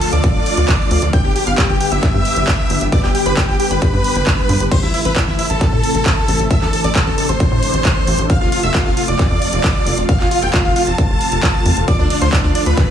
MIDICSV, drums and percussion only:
0, 0, Header, 1, 2, 480
1, 0, Start_track
1, 0, Key_signature, 0, "minor"
1, 0, Tempo, 447761
1, 1215, Time_signature, 4, 2, 24, 8
1, 13834, End_track
2, 0, Start_track
2, 0, Title_t, "Drums"
2, 15, Note_on_c, 9, 46, 103
2, 123, Note_off_c, 9, 46, 0
2, 136, Note_on_c, 9, 42, 66
2, 243, Note_off_c, 9, 42, 0
2, 254, Note_on_c, 9, 36, 118
2, 256, Note_on_c, 9, 42, 66
2, 361, Note_off_c, 9, 36, 0
2, 363, Note_off_c, 9, 42, 0
2, 495, Note_on_c, 9, 46, 104
2, 602, Note_off_c, 9, 46, 0
2, 615, Note_on_c, 9, 42, 68
2, 723, Note_off_c, 9, 42, 0
2, 735, Note_on_c, 9, 36, 118
2, 735, Note_on_c, 9, 39, 113
2, 735, Note_on_c, 9, 42, 67
2, 842, Note_off_c, 9, 36, 0
2, 842, Note_off_c, 9, 39, 0
2, 842, Note_off_c, 9, 42, 0
2, 975, Note_on_c, 9, 46, 106
2, 1082, Note_off_c, 9, 46, 0
2, 1095, Note_on_c, 9, 42, 69
2, 1202, Note_off_c, 9, 42, 0
2, 1214, Note_on_c, 9, 36, 118
2, 1215, Note_on_c, 9, 42, 68
2, 1322, Note_off_c, 9, 36, 0
2, 1322, Note_off_c, 9, 42, 0
2, 1455, Note_on_c, 9, 46, 100
2, 1562, Note_off_c, 9, 46, 0
2, 1575, Note_on_c, 9, 42, 66
2, 1682, Note_off_c, 9, 42, 0
2, 1695, Note_on_c, 9, 36, 116
2, 1695, Note_on_c, 9, 39, 118
2, 1695, Note_on_c, 9, 42, 69
2, 1802, Note_off_c, 9, 36, 0
2, 1802, Note_off_c, 9, 39, 0
2, 1802, Note_off_c, 9, 42, 0
2, 1935, Note_on_c, 9, 46, 96
2, 2042, Note_off_c, 9, 46, 0
2, 2055, Note_on_c, 9, 42, 65
2, 2163, Note_off_c, 9, 42, 0
2, 2174, Note_on_c, 9, 36, 117
2, 2175, Note_on_c, 9, 39, 36
2, 2175, Note_on_c, 9, 42, 68
2, 2282, Note_off_c, 9, 36, 0
2, 2282, Note_off_c, 9, 39, 0
2, 2282, Note_off_c, 9, 42, 0
2, 2415, Note_on_c, 9, 46, 102
2, 2522, Note_off_c, 9, 46, 0
2, 2535, Note_on_c, 9, 42, 69
2, 2642, Note_off_c, 9, 42, 0
2, 2654, Note_on_c, 9, 36, 114
2, 2654, Note_on_c, 9, 39, 115
2, 2654, Note_on_c, 9, 42, 66
2, 2761, Note_off_c, 9, 39, 0
2, 2761, Note_off_c, 9, 42, 0
2, 2762, Note_off_c, 9, 36, 0
2, 2894, Note_on_c, 9, 46, 101
2, 3001, Note_off_c, 9, 46, 0
2, 3014, Note_on_c, 9, 42, 70
2, 3122, Note_off_c, 9, 42, 0
2, 3134, Note_on_c, 9, 36, 121
2, 3135, Note_on_c, 9, 42, 72
2, 3242, Note_off_c, 9, 36, 0
2, 3242, Note_off_c, 9, 42, 0
2, 3255, Note_on_c, 9, 39, 39
2, 3362, Note_off_c, 9, 39, 0
2, 3375, Note_on_c, 9, 46, 104
2, 3482, Note_off_c, 9, 46, 0
2, 3495, Note_on_c, 9, 42, 65
2, 3602, Note_off_c, 9, 42, 0
2, 3614, Note_on_c, 9, 36, 118
2, 3615, Note_on_c, 9, 39, 122
2, 3615, Note_on_c, 9, 42, 70
2, 3721, Note_off_c, 9, 36, 0
2, 3722, Note_off_c, 9, 39, 0
2, 3722, Note_off_c, 9, 42, 0
2, 3856, Note_on_c, 9, 46, 102
2, 3963, Note_off_c, 9, 46, 0
2, 3975, Note_on_c, 9, 42, 69
2, 4083, Note_off_c, 9, 42, 0
2, 4094, Note_on_c, 9, 36, 114
2, 4096, Note_on_c, 9, 42, 70
2, 4202, Note_off_c, 9, 36, 0
2, 4203, Note_off_c, 9, 42, 0
2, 4335, Note_on_c, 9, 46, 104
2, 4442, Note_off_c, 9, 46, 0
2, 4455, Note_on_c, 9, 42, 73
2, 4562, Note_off_c, 9, 42, 0
2, 4575, Note_on_c, 9, 36, 119
2, 4575, Note_on_c, 9, 39, 121
2, 4575, Note_on_c, 9, 42, 69
2, 4682, Note_off_c, 9, 36, 0
2, 4682, Note_off_c, 9, 39, 0
2, 4682, Note_off_c, 9, 42, 0
2, 4815, Note_on_c, 9, 46, 104
2, 4923, Note_off_c, 9, 46, 0
2, 4936, Note_on_c, 9, 42, 70
2, 5043, Note_off_c, 9, 42, 0
2, 5054, Note_on_c, 9, 36, 122
2, 5055, Note_on_c, 9, 42, 71
2, 5055, Note_on_c, 9, 49, 78
2, 5162, Note_off_c, 9, 36, 0
2, 5163, Note_off_c, 9, 42, 0
2, 5163, Note_off_c, 9, 49, 0
2, 5296, Note_on_c, 9, 46, 104
2, 5403, Note_off_c, 9, 46, 0
2, 5416, Note_on_c, 9, 42, 68
2, 5523, Note_off_c, 9, 42, 0
2, 5534, Note_on_c, 9, 36, 119
2, 5536, Note_on_c, 9, 39, 126
2, 5536, Note_on_c, 9, 42, 70
2, 5642, Note_off_c, 9, 36, 0
2, 5643, Note_off_c, 9, 39, 0
2, 5643, Note_off_c, 9, 42, 0
2, 5775, Note_on_c, 9, 46, 104
2, 5882, Note_off_c, 9, 46, 0
2, 5896, Note_on_c, 9, 42, 69
2, 6003, Note_off_c, 9, 42, 0
2, 6014, Note_on_c, 9, 36, 123
2, 6016, Note_on_c, 9, 39, 38
2, 6016, Note_on_c, 9, 42, 69
2, 6122, Note_off_c, 9, 36, 0
2, 6123, Note_off_c, 9, 39, 0
2, 6123, Note_off_c, 9, 42, 0
2, 6255, Note_on_c, 9, 46, 109
2, 6363, Note_off_c, 9, 46, 0
2, 6376, Note_on_c, 9, 42, 71
2, 6483, Note_off_c, 9, 42, 0
2, 6495, Note_on_c, 9, 36, 122
2, 6496, Note_on_c, 9, 39, 122
2, 6496, Note_on_c, 9, 42, 72
2, 6602, Note_off_c, 9, 36, 0
2, 6603, Note_off_c, 9, 39, 0
2, 6603, Note_off_c, 9, 42, 0
2, 6736, Note_on_c, 9, 46, 113
2, 6843, Note_off_c, 9, 46, 0
2, 6856, Note_on_c, 9, 42, 69
2, 6963, Note_off_c, 9, 42, 0
2, 6975, Note_on_c, 9, 36, 127
2, 6975, Note_on_c, 9, 42, 70
2, 7082, Note_off_c, 9, 36, 0
2, 7083, Note_off_c, 9, 42, 0
2, 7096, Note_on_c, 9, 39, 40
2, 7203, Note_off_c, 9, 39, 0
2, 7216, Note_on_c, 9, 46, 112
2, 7323, Note_off_c, 9, 46, 0
2, 7336, Note_on_c, 9, 42, 66
2, 7443, Note_off_c, 9, 42, 0
2, 7455, Note_on_c, 9, 36, 124
2, 7456, Note_on_c, 9, 39, 127
2, 7456, Note_on_c, 9, 42, 69
2, 7562, Note_off_c, 9, 36, 0
2, 7563, Note_off_c, 9, 39, 0
2, 7563, Note_off_c, 9, 42, 0
2, 7696, Note_on_c, 9, 46, 112
2, 7803, Note_off_c, 9, 46, 0
2, 7816, Note_on_c, 9, 42, 66
2, 7924, Note_off_c, 9, 42, 0
2, 7935, Note_on_c, 9, 36, 125
2, 7936, Note_on_c, 9, 42, 70
2, 8042, Note_off_c, 9, 36, 0
2, 8044, Note_off_c, 9, 42, 0
2, 8175, Note_on_c, 9, 46, 113
2, 8282, Note_off_c, 9, 46, 0
2, 8296, Note_on_c, 9, 42, 70
2, 8403, Note_off_c, 9, 42, 0
2, 8415, Note_on_c, 9, 36, 127
2, 8416, Note_on_c, 9, 39, 123
2, 8416, Note_on_c, 9, 42, 66
2, 8522, Note_off_c, 9, 36, 0
2, 8523, Note_off_c, 9, 39, 0
2, 8523, Note_off_c, 9, 42, 0
2, 8655, Note_on_c, 9, 46, 112
2, 8763, Note_off_c, 9, 46, 0
2, 8775, Note_on_c, 9, 42, 68
2, 8882, Note_off_c, 9, 42, 0
2, 8895, Note_on_c, 9, 36, 127
2, 8895, Note_on_c, 9, 42, 67
2, 9002, Note_off_c, 9, 36, 0
2, 9002, Note_off_c, 9, 42, 0
2, 9135, Note_on_c, 9, 46, 116
2, 9243, Note_off_c, 9, 46, 0
2, 9256, Note_on_c, 9, 42, 62
2, 9363, Note_off_c, 9, 42, 0
2, 9375, Note_on_c, 9, 36, 127
2, 9375, Note_on_c, 9, 39, 119
2, 9375, Note_on_c, 9, 42, 63
2, 9482, Note_off_c, 9, 36, 0
2, 9482, Note_off_c, 9, 39, 0
2, 9482, Note_off_c, 9, 42, 0
2, 9616, Note_on_c, 9, 46, 109
2, 9723, Note_off_c, 9, 46, 0
2, 9736, Note_on_c, 9, 42, 62
2, 9843, Note_off_c, 9, 42, 0
2, 9855, Note_on_c, 9, 36, 127
2, 9856, Note_on_c, 9, 39, 40
2, 9856, Note_on_c, 9, 42, 67
2, 9962, Note_off_c, 9, 36, 0
2, 9963, Note_off_c, 9, 39, 0
2, 9963, Note_off_c, 9, 42, 0
2, 10096, Note_on_c, 9, 46, 113
2, 10203, Note_off_c, 9, 46, 0
2, 10215, Note_on_c, 9, 42, 67
2, 10323, Note_off_c, 9, 42, 0
2, 10335, Note_on_c, 9, 36, 127
2, 10336, Note_on_c, 9, 39, 119
2, 10336, Note_on_c, 9, 42, 65
2, 10442, Note_off_c, 9, 36, 0
2, 10443, Note_off_c, 9, 39, 0
2, 10443, Note_off_c, 9, 42, 0
2, 10575, Note_on_c, 9, 46, 115
2, 10682, Note_off_c, 9, 46, 0
2, 10695, Note_on_c, 9, 42, 67
2, 10802, Note_off_c, 9, 42, 0
2, 10815, Note_on_c, 9, 36, 127
2, 10815, Note_on_c, 9, 42, 66
2, 10922, Note_off_c, 9, 36, 0
2, 10923, Note_off_c, 9, 42, 0
2, 10936, Note_on_c, 9, 39, 36
2, 11043, Note_off_c, 9, 39, 0
2, 11056, Note_on_c, 9, 46, 109
2, 11163, Note_off_c, 9, 46, 0
2, 11175, Note_on_c, 9, 42, 59
2, 11283, Note_off_c, 9, 42, 0
2, 11294, Note_on_c, 9, 36, 127
2, 11296, Note_on_c, 9, 39, 121
2, 11296, Note_on_c, 9, 42, 66
2, 11402, Note_off_c, 9, 36, 0
2, 11403, Note_off_c, 9, 39, 0
2, 11403, Note_off_c, 9, 42, 0
2, 11535, Note_on_c, 9, 46, 113
2, 11642, Note_off_c, 9, 46, 0
2, 11655, Note_on_c, 9, 42, 62
2, 11763, Note_off_c, 9, 42, 0
2, 11775, Note_on_c, 9, 36, 125
2, 11775, Note_on_c, 9, 42, 61
2, 11882, Note_off_c, 9, 36, 0
2, 11882, Note_off_c, 9, 42, 0
2, 12015, Note_on_c, 9, 46, 109
2, 12122, Note_off_c, 9, 46, 0
2, 12135, Note_on_c, 9, 42, 65
2, 12242, Note_off_c, 9, 42, 0
2, 12254, Note_on_c, 9, 36, 126
2, 12255, Note_on_c, 9, 39, 119
2, 12255, Note_on_c, 9, 42, 65
2, 12362, Note_off_c, 9, 36, 0
2, 12362, Note_off_c, 9, 39, 0
2, 12362, Note_off_c, 9, 42, 0
2, 12495, Note_on_c, 9, 46, 114
2, 12602, Note_off_c, 9, 46, 0
2, 12616, Note_on_c, 9, 42, 64
2, 12723, Note_off_c, 9, 42, 0
2, 12734, Note_on_c, 9, 36, 127
2, 12736, Note_on_c, 9, 42, 66
2, 12842, Note_off_c, 9, 36, 0
2, 12843, Note_off_c, 9, 42, 0
2, 12975, Note_on_c, 9, 46, 106
2, 12975, Note_on_c, 9, 51, 76
2, 13083, Note_off_c, 9, 46, 0
2, 13083, Note_off_c, 9, 51, 0
2, 13096, Note_on_c, 9, 42, 60
2, 13203, Note_off_c, 9, 42, 0
2, 13214, Note_on_c, 9, 36, 120
2, 13216, Note_on_c, 9, 39, 114
2, 13216, Note_on_c, 9, 42, 65
2, 13322, Note_off_c, 9, 36, 0
2, 13323, Note_off_c, 9, 39, 0
2, 13323, Note_off_c, 9, 42, 0
2, 13455, Note_on_c, 9, 46, 105
2, 13455, Note_on_c, 9, 51, 78
2, 13562, Note_off_c, 9, 46, 0
2, 13562, Note_off_c, 9, 51, 0
2, 13575, Note_on_c, 9, 42, 65
2, 13682, Note_off_c, 9, 42, 0
2, 13694, Note_on_c, 9, 36, 122
2, 13696, Note_on_c, 9, 39, 36
2, 13696, Note_on_c, 9, 42, 65
2, 13802, Note_off_c, 9, 36, 0
2, 13803, Note_off_c, 9, 39, 0
2, 13803, Note_off_c, 9, 42, 0
2, 13834, End_track
0, 0, End_of_file